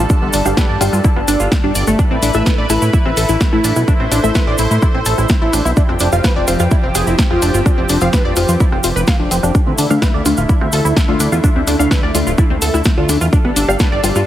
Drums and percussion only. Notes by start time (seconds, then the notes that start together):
0.10 kick, cross-stick, cabasa
0.33 open hi-hat, cabasa
0.46 cross-stick, cabasa
0.57 kick, snare, cabasa
0.81 cross-stick, open hi-hat, cabasa
0.93 cabasa
1.04 kick, cabasa
1.16 cross-stick
1.28 open hi-hat, cabasa
1.40 cabasa
1.52 kick, cross-stick, snare, cabasa
1.75 open hi-hat, cabasa
1.87 cross-stick, cabasa
1.99 kick, cross-stick, cabasa
2.22 open hi-hat, cabasa
2.34 cross-stick, cabasa
2.46 kick, snare, cabasa
2.70 cross-stick, open hi-hat, cabasa
2.82 cabasa
2.93 kick, cabasa
3.06 cross-stick
3.17 open hi-hat, cabasa
3.29 cabasa
3.41 kick, cross-stick, snare, cabasa
3.64 open hi-hat, cabasa
3.76 cross-stick, cabasa
3.88 kick, cabasa
4.12 cross-stick, open hi-hat, cabasa
4.24 cabasa
4.35 kick, snare, cabasa
4.47 cross-stick
4.58 open hi-hat, cabasa
4.71 cabasa
4.82 kick, cross-stick, cabasa
5.06 open hi-hat, cabasa
5.18 cross-stick, cabasa
5.29 kick, snare, cabasa
5.53 cross-stick, open hi-hat, cabasa
5.66 cabasa
5.77 kick, cabasa
5.89 cross-stick
6.00 open hi-hat, cabasa
6.12 cabasa
6.24 kick, cross-stick, snare, cabasa
6.48 open hi-hat, cabasa
6.60 cross-stick, cabasa
6.71 kick, cabasa
6.95 cross-stick, open hi-hat, cabasa
7.07 cabasa
7.19 kick, snare, cabasa
7.31 cross-stick
7.42 open hi-hat, cabasa
7.54 cabasa
7.66 kick, cross-stick, cabasa
7.89 open hi-hat, cabasa
8.01 cross-stick, cabasa
8.13 kick, snare, cabasa
8.36 cross-stick, open hi-hat, cabasa
8.49 cabasa
8.60 kick, cabasa
8.72 cross-stick
8.84 open hi-hat, cabasa
8.97 cabasa
9.07 kick, cross-stick, snare, cabasa
9.31 open hi-hat, cabasa
9.43 cross-stick, cabasa
9.55 kick, cross-stick, cabasa
9.78 open hi-hat, cabasa
9.90 cross-stick, cabasa
10.02 kick, snare, cabasa
10.26 cross-stick, open hi-hat, cabasa
10.37 cabasa
10.49 kick, cabasa
10.61 cross-stick
10.72 open hi-hat, cabasa
10.85 cabasa
10.97 kick, cross-stick, snare, cabasa
11.20 open hi-hat, cabasa
11.32 cross-stick, cabasa
11.44 kick, cabasa
11.67 cross-stick, open hi-hat, cabasa
11.80 cabasa
11.91 kick, snare, cabasa
12.03 cross-stick
12.15 open hi-hat, cabasa
12.27 cabasa
12.38 kick, cross-stick, cabasa
12.62 open hi-hat, cabasa
12.74 cross-stick, cabasa
12.84 kick, snare, cabasa
13.09 cross-stick, open hi-hat, cabasa
13.21 cabasa
13.33 kick, cabasa
13.45 cross-stick
13.56 open hi-hat, cabasa
13.70 cabasa
13.79 kick, cross-stick, snare, cabasa
14.04 open hi-hat, cabasa
14.16 cross-stick, cabasa